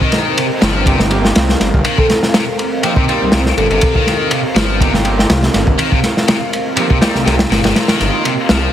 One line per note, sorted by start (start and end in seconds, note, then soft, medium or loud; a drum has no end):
0.00 0.36 D#3 medium
0.00 8.70 C4 medium
0.00 8.70 A#4 medium
0.00 0.85 D#5 medium
0.00 kick medium
0.12 snare soft
0.12 ride medium
0.37 0.46 C3 loud
0.37 ride medium
0.62 1.32 G1 loud
0.62 0.86 F3 loud
0.62 snare loud
0.62 ride medium
0.86 0.99 C3 loud
0.86 0.98 A#3 medium
0.86 0.98 C4 medium
0.86 0.98 D#4 medium
0.86 0.98 G4 medium
0.86 8.73 F5 medium
0.86 kick loud
0.86 ride medium
0.99 snare soft
1.11 1.28 A#3 loud
1.11 1.28 C4 medium
1.11 1.28 D#4 medium
1.11 1.28 G4 loud
1.11 ride medium
1.25 snare medium
1.35 1.55 C2 loud
1.35 snare loud
1.35 ride loud
1.49 snare medium
1.60 1.71 G1 loud
1.60 snare soft
1.60 ride medium
1.74 1.83 G1 medium
1.74 kick medium
1.85 1.98 D#3 loud
1.85 ride medium
1.98 2.06 C3 medium
1.98 2.06 A4 medium
1.98 kick loud
2.09 2.18 A4 medium
2.09 snare soft
2.09 ride medium
2.23 snare soft
2.34 2.43 C3 loud
2.34 snare loud
2.34 ride loud
2.59 ride medium
2.83 2.92 F3 loud
2.83 2.95 A#3 medium
2.83 2.95 C4 medium
2.83 2.95 D#4 medium
2.83 2.95 G4 loud
2.83 ride medium
2.96 3.04 C3 medium
2.96 kick loud
3.08 3.21 G3 loud
3.08 3.25 A#3 medium
3.08 3.25 C4 medium
3.08 3.25 D#4 medium
3.08 3.25 G4 loud
3.08 ride medium
3.21 3.30 C2 soft
3.32 3.52 C2 loud
3.32 3.41 C3 loud
3.32 snare loud
3.32 ride loud
3.46 snare medium
3.57 3.67 G1 loud
3.57 3.66 A#2 medium
3.57 3.66 A4 medium
3.57 ride medium
3.70 3.79 G1 loud
3.70 3.94 C3 loud
3.70 3.78 A4 medium
3.70 ride soft
3.81 kick loud
3.81 ride loud
3.95 4.30 D#3 loud
3.95 kick loud
4.07 snare soft
4.07 ride medium
4.31 4.40 C3 loud
4.31 ride medium
4.55 5.25 G1 loud
4.55 4.79 F3 loud
4.55 snare loud
4.55 ride medium
4.80 4.93 C3 loud
4.80 4.91 A#3 medium
4.80 4.91 C4 medium
4.80 4.91 D#4 medium
4.80 4.91 G4 medium
4.80 kick loud
4.80 ride medium
4.94 snare soft
5.04 5.22 A#3 loud
5.04 5.22 C4 medium
5.04 5.22 D#4 medium
5.04 5.22 G4 loud
5.04 ride medium
5.19 snare medium
5.30 5.49 C2 loud
5.30 snare loud
5.30 ride medium
5.43 snare medium
5.54 5.64 G1 loud
5.54 snare soft
5.54 ride medium
5.67 5.76 G1 medium
5.67 kick loud
5.79 5.91 D#3 loud
5.79 ride loud
5.92 5.99 C3 medium
5.92 kick medium
6.03 snare soft
6.03 ride medium
6.17 snare soft
6.28 6.36 C3 loud
6.28 snare loud
6.28 ride medium
6.53 ride medium
6.77 6.85 F3 loud
6.77 6.88 A#3 medium
6.77 6.88 C4 medium
6.77 6.88 D#4 medium
6.77 6.88 G4 loud
6.77 ride loud
6.90 6.97 C3 medium
6.90 kick loud
7.01 7.14 G3 loud
7.01 7.19 A#3 loud
7.01 7.19 C4 medium
7.01 7.19 D#4 medium
7.01 7.19 G4 loud
7.01 snare loud
7.01 ride medium
7.15 7.24 C2 soft
7.15 snare soft
7.26 7.46 C2 loud
7.26 7.34 C3 loud
7.26 snare soft
7.26 ride medium
7.39 snare loud
7.39 ride medium
7.51 7.61 G1 loud
7.51 7.59 A#2 medium
7.51 snare loud
7.51 ride medium
7.64 7.73 G1 medium
7.64 7.87 C3 loud
7.64 snare loud
7.64 ride medium
7.76 snare loud
7.76 ride medium
7.88 8.23 D#3 loud
7.88 snare loud
7.88 ride medium
8.00 8.10 G1 loud
8.00 snare soft
8.00 ride medium
8.13 8.23 A#3 medium
8.13 8.23 C4 medium
8.13 8.23 D#4 medium
8.13 8.23 F4 loud
8.24 8.33 C3 loud
8.24 ride medium
8.49 8.69 C2 loud
8.49 8.73 F3 loud
8.49 snare loud
8.49 ride medium